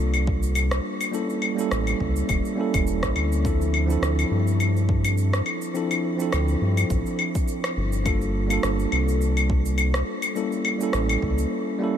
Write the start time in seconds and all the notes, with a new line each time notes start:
Already playing: C2 G3 A#3 D4 F4 A4
0.14 cabasa, claves
0.27 kick
0.43 cabasa
0.55 cabasa, claves
0.71 cross-stick, cabasa
1.01 cabasa, claves
1.12 G3 A#3 C#4 E4 A4, cabasa
1.30 cabasa
1.42 claves
1.55 G3 A#3 C#4, cabasa
1.59 E4 A4
1.71 A1, cross-stick, cabasa
1.87 cabasa, claves
2.00 C#2, kick
2.16 cabasa
2.29 E1, kick, cabasa, claves
2.45 cabasa
2.55 G3 A#3 C#4
2.59 E4 A4
2.74 E1, kick, cabasa, claves
2.87 cabasa
3.03 A1, kick, cross-stick, cabasa
3.16 D2, claves
3.32 cabasa
3.44 F3 C4 D4 E4 A4, kick, cabasa
3.61 cabasa
3.74 claves
3.86 F3 C4 D4 E4, cabasa
3.92 A4
4.02 D2, cross-stick, cabasa
4.19 cabasa, claves
4.31 G2
4.47 cabasa
4.60 cabasa, claves
4.76 cabasa
4.89 kick
5.05 cabasa, claves
5.17 cabasa
5.33 cross-stick, cabasa
5.46 claves
5.62 cabasa
5.74 F3 C4 D4 E4 A4, cabasa
5.91 cabasa, claves
6.16 F3 C4 D4, cabasa
6.21 E4 A4
6.33 D2, cross-stick, cabasa, claves
6.48 cabasa
6.61 G2
6.77 cabasa, claves
6.90 A1, kick, cabasa
7.06 cabasa
7.19 claves
7.35 kick, cabasa
7.48 cabasa
7.64 cross-stick, cabasa, claves
7.77 G1
7.92 cabasa
8.04 G3 A#3 D4 F4 A4, kick, cabasa, claves
8.21 cabasa
8.47 G3 A#3 D4 F4, cabasa, claves
8.53 A4
8.63 G1, cross-stick, cabasa
8.79 cabasa
8.92 C2, claves
9.08 cabasa
9.21 cabasa
9.37 cabasa, claves
9.50 kick
9.65 cabasa
9.78 cabasa, claves
9.94 cross-stick, cabasa
10.22 cabasa, claves
10.35 G3 A#3 C#4 E4 A4, cabasa
10.52 cabasa
10.65 claves
10.78 G3 A#3 C#4, cabasa
10.82 E4 A4
10.93 A1, cross-stick, cabasa
11.09 cabasa, claves
11.22 C#2, kick
11.38 cabasa
11.78 G3 A#3 C#4 E4
11.83 A4